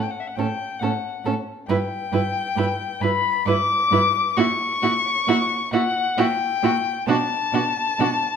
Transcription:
0.03 0.12 G5 medium
0.11 0.21 F#5 medium
0.20 0.29 E5 medium
0.27 0.38 F#5 medium
0.36 0.45 A2 medium
0.36 0.46 C#4 medium
0.36 0.46 A4 medium
0.36 0.81 G5 loud
0.80 0.89 A2 medium
0.80 0.91 C#4 medium
0.80 0.90 A4 medium
0.80 1.25 F#5 medium
1.25 1.33 A2 medium
1.25 1.34 C#4 medium
1.25 1.34 A4 medium
1.67 1.77 G2 medium
1.67 1.78 E4 medium
1.67 1.77 B4 medium
1.67 3.03 G5 loud
2.12 2.20 G2 medium
2.12 2.22 E4 medium
2.12 2.21 B4 medium
2.56 2.64 G2 medium
2.56 2.66 E4 medium
2.56 2.65 B4 medium
3.01 3.09 G2 medium
3.01 3.11 E4 medium
3.01 3.10 B4 medium
3.01 3.47 B5 loud
3.46 3.54 G2 medium
3.46 3.56 E4 medium
3.46 3.55 B4 medium
3.46 4.38 D6 loud
3.91 3.99 G2 medium
3.91 4.01 E4 medium
3.91 4.00 B4 medium
4.36 4.45 A#2 medium
4.36 4.46 E4 medium
4.36 4.45 F#4 medium
4.36 5.73 C#6 loud
4.82 4.90 A#2 medium
4.82 4.92 E4 medium
4.82 4.90 F#4 medium
5.27 5.35 A#2 medium
5.27 5.37 E4 medium
5.27 5.36 F#4 medium
5.72 5.80 A#2 medium
5.72 5.82 E4 medium
5.72 5.81 F#4 medium
5.72 6.20 F#5 loud
6.17 6.25 A#2 medium
6.17 6.27 E4 medium
6.17 6.26 F#4 medium
6.17 7.08 G5 loud
6.63 6.71 A#2 loud
6.63 6.71 E4 medium
6.63 6.72 F#4 medium
7.07 7.15 B2 loud
7.07 7.16 D4 medium
7.07 7.16 F#4 medium
7.07 8.36 A5 loud
7.53 7.61 B2 medium
7.53 7.62 D4 medium
7.53 7.62 F#4 medium
7.99 8.07 B2 medium
7.99 8.08 D4 medium
7.99 8.08 F#4 medium

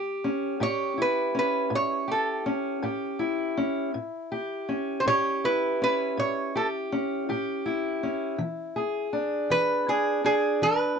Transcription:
0.00 0.17 A2 medium
0.00 0.61 G4 medium
0.24 1.34 C#4 medium
0.60 1.28 A2 medium
0.60 2.07 G4 medium
0.60 1.01 C#5 medium
0.98 3.19 E4 medium
1.02 1.38 B4 medium
1.35 2.45 C#4 medium
1.39 1.72 B4 medium
1.70 2.38 A2 medium
1.75 2.09 C#5 medium
2.08 2.82 G4 medium
2.08 2.45 A4 medium
2.46 3.56 C#4 medium
2.82 3.50 A2 medium
2.82 3.90 G4 medium
3.19 5.44 E4 medium
3.57 3.90 C#4 medium
3.94 4.61 A2 medium
4.32 5.06 G4 medium
4.69 5.80 C#4 medium
5.00 5.07 C5 medium
5.06 5.73 A2 medium
5.06 6.54 G4 medium
5.06 5.45 C#5 loud
5.44 7.65 E4 medium
5.44 5.82 B4 medium
5.82 6.91 C#4 medium
5.82 6.17 B4 medium
6.17 6.84 A2 medium
6.17 6.53 C#5 medium
6.55 7.28 G4 medium
6.55 6.66 A4 medium
6.92 8.02 C#4 medium
7.29 7.95 A2 medium
7.29 8.36 G4 medium
7.66 9.12 E4 medium
8.03 8.35 C#4 medium
8.38 9.06 E3 medium
8.76 9.91 G#4 medium
9.13 9.88 D4 medium
9.50 10.17 E3 medium
9.50 9.89 B4 loud
9.88 10.24 D4 medium
9.88 10.24 G#4 medium
10.24 10.98 D4 medium
10.24 10.63 G#4 medium
10.62 10.99 E3 medium
10.62 10.99 B4 loud

